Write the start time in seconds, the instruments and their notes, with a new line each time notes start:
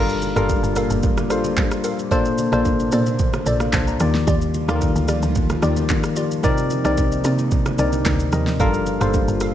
Already playing: log drum bass G1, analog synth pad A#2 A#3 F4, tine electric piano G3 D4 F4 A4 A#4, synth pluck A4 A#4 F5
0.09 shaker
0.22 low bongo, shaker
0.36 log drum bass G1, tine electric piano G3 D4 F4 A4 A#4, synth pluck A4 A#4 F5, cross-stick, shaker
0.49 kick, high bongo, shaker
0.63 log drum bass G1, shaker
0.76 synth pluck A4 A#4 F5, cross-stick, shaker
0.90 log drum bass G1, high bongo, shaker
1.03 kick, low conga, shaker
1.17 cross-stick, low bongo, shaker
1.30 log drum bass A#1, tine electric piano G3 D4 F4 A4 C5, synth pluck A4 A#4 F5, cross-stick, shaker
1.44 low bongo, shaker
1.57 kick, clap, high bongo, low conga, shaker
1.71 cross-stick, shaker
1.84 synth pluck A4 A#4 F5, shaker
1.99 shaker
2.11 tine electric piano A#2 A#3 D4 A4 C5, analog synth pad C3 D4, synth pluck A4 C5 D5, kick, low conga, shaker
2.25 shaker
2.38 low bongo, shaker
2.52 log drum bass A#1, tine electric piano A#2 A#3 D4 A4 C5, synth pluck A4 C5 D5, cross-stick, shaker
2.65 kick, high bongo, shaker
2.80 shaker
2.92 log drum bass A#2, synth pluck A4 C5 D5, shaker
3.06 high bongo, shaker
3.19 kick, low conga, shaker
3.33 cross-stick, low bongo, shaker
3.46 log drum bass A#1, tine electric piano F4 D5, synth pluck A4 C5 D5, shaker
3.60 tine electric piano A4 F5, cross-stick, low bongo, shaker
3.73 log drum bass C2, tine electric piano C5 A5, kick, snare, clap, high bongo, low conga, shaker
3.87 tine electric piano D5 A#5, shaker
4.00 log drum bass D#2, tine electric piano D#3 A#3 F4 G4 D5, analog synth pad F3 G3 F4, cross-stick, shaker
4.15 snare, shaker
4.27 log drum bass D#2, synth pluck F4 G4 D5, kick, low conga, shaker
4.41 shaker
4.54 low bongo, shaker
4.68 log drum bass D#2, tine electric piano D#3 A#3 F4 G4 A4, synth pluck F4 G4 D5, cross-stick, shaker
4.76 tine electric piano A#4
4.81 kick, high bongo, shaker
4.96 log drum bass D2, shaker
5.08 synth pluck F4 G4 D5, cross-stick, shaker
5.22 log drum bass D2, high bongo, shaker
5.35 kick, low conga, shaker
5.50 cross-stick, low bongo, shaker
5.62 log drum bass D#2, tine electric piano D#3 A#3 F4 G4 D5, synth pluck F4 G4 D5, cross-stick, shaker
5.76 low bongo, shaker
5.89 kick, clap, high bongo, low conga, shaker
6.03 cross-stick, shaker
6.16 synth pluck F4 G4 D5, shaker
6.31 shaker
6.43 tine electric piano C3 C4 D#4 A#4 D5, analog synth pad A#3 D#4, synth pluck D#4 A#4 D5, kick, low conga, shaker
6.58 shaker
6.70 low bongo, shaker
6.84 log drum bass C2, tine electric piano C3 C4 D#4 A#4 D5, synth pluck D#4 A#4 D5, cross-stick, shaker
6.97 kick, high bongo, shaker
7.12 shaker
7.24 log drum bass C3, synth pluck D#4 A#4 D5, shaker
7.39 high bongo, shaker
7.51 kick, low conga, shaker
7.66 cross-stick, low bongo, shaker
7.78 log drum bass C2, tine electric piano C3 C4 D4 A#4 D5, synth pluck D#4 A#4 D5, shaker
7.85 tine electric piano D#4
7.92 low bongo, shaker
8.05 log drum bass D2, kick, snare, clap, high bongo, low conga, shaker
8.20 shaker
8.32 log drum bass D#2, tine electric piano C3 C4 D#4 A#4 D#5, cross-stick, shaker
8.47 snare, shaker
8.59 log drum bass G1, analog synth pad A#2 A#3 F4, tine electric piano G3 D4 F4 A4 A#4, synth pluck A4 A#4 F5, kick, low conga, shaker
8.74 shaker
8.86 low bongo, shaker
9.00 log drum bass G1, tine electric piano G3 D4 F4 A4 C5, synth pluck A4 A#4 F5, cross-stick, shaker
9.14 kick, high bongo, shaker
9.28 log drum bass G1, shaker
9.40 synth pluck A4 A#4 F5, cross-stick, shaker